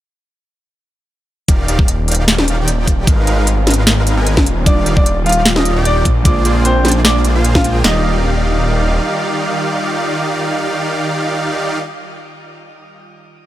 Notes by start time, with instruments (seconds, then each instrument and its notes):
1.48 detuned saw bass D#1, ambient pad D#3 G3 F4 D5, supersaw synth D#3 D#4 G4 D5 F5, kick, closed hi-hat
1.68 supersaw synth D#3 D#4 G4 D5 F5, closed hi-hat
1.79 kick
1.88 closed hi-hat
2.08 supersaw synth D#3 D#4 G4 D5 F5, closed hi-hat
2.12 closed hi-hat
2.15 closed hi-hat
2.28 snare, closed hi-hat
2.38 snare
2.48 closed hi-hat
2.58 supersaw synth D#3 D#4 G4 D5 G5
2.68 closed hi-hat
2.87 kick, closed hi-hat
3.07 detuned saw bass G#1, ambient pad G#3 B3, supersaw synth G#3 D#4 A#4 B4 F5, kick, closed hi-hat
3.27 supersaw synth G#3 D#4 A#4 B4 F5, closed hi-hat
3.47 closed hi-hat
3.67 supersaw synth G#3 D#4 A#4 B4 F5, snare, closed hi-hat
3.70 closed hi-hat
3.74 closed hi-hat
3.87 snare, closed hi-hat
4.07 closed hi-hat
4.17 supersaw synth G#3 D#4 A#4 B4 G#5
4.27 closed hi-hat
4.37 kick, snare
4.46 detuned saw bass D#1, ambient pad G3 F4 D5, closed hi-hat
4.64 synth keys D#3 G3 D4 F4, supersaw synth D#3 D#4 G4 D5 F5, grand piano D4 D5, kick, closed hi-hat
4.86 supersaw synth D#3 D#4 G4 D5 F5, closed hi-hat
4.97 grand piano D4 D5, kick
5.06 closed hi-hat
5.24 synth keys D#3 G3 D5, supersaw synth D#3 D#4 G4 D5 F5, grand piano F4 F5, closed hi-hat
5.28 synth keys F4, closed hi-hat
5.32 closed hi-hat
5.46 snare, closed hi-hat
5.56 grand piano D#4 D#5, snare
5.65 closed hi-hat
5.76 supersaw synth D#3 D#4 G4 D5 G5
5.85 grand piano D4 D5, closed hi-hat
6.05 detuned saw bass A#1, ambient pad D3 G#3 A#3, kick, closed hi-hat
6.23 synth keys D3 G#3 A#3, supersaw synth A#3 F4 G#4 C5 D5, grand piano D4 D5, kick, closed hi-hat
6.27 synth keys F4
6.45 supersaw synth A#3 F4 G#4 C5 D5, closed hi-hat
6.65 grand piano C4 C5, closed hi-hat
6.84 synth keys D3 G#3 A#3 D4, supersaw synth A#3 F4 G#4 C5 D5, snare, closed hi-hat
6.88 closed hi-hat
6.92 closed hi-hat
7.05 grand piano D4 D5, snare, closed hi-hat
7.24 synth keys D3 G#3 A#3 D4, closed hi-hat
7.35 supersaw synth A#3 F4 G#4 C5 F5
7.45 closed hi-hat
7.55 grand piano F4 F5, kick, snare
7.63 synth keys D3 G#3 A#3 F4, supersaw synth A#3 F4 G#4 C5 G5, closed hi-hat
7.81 detuned saw bass D#1, synth keys D#3 G3 F5, ambient pad D#3 G3 F4 F5, supersaw synth D#3 D#4 G4 D5 F5, grand piano D#5, snare
7.87 synth keys F4